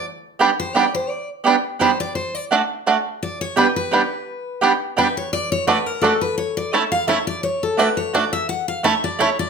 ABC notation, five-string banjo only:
X:1
M:3/4
L:1/8
Q:"Swing" 1/4=171
K:D
V:1 name="Five-string banjo"
z2 [G,B,D] z [G,B,D] z | z2 [G,B,D] z [G,B,D] z | z2 [A,D] z [A,D] z | z2 [G,B,D] z [G,B,D] z |
z2 [G,B,D] z [G,B,D] z | z2 [A,D] z [A,D] z | z2 [A,CE] z [A,CE] z | z2 [A,D] z [A,D] z |
z2 [A,CE] z [A,CE] z |]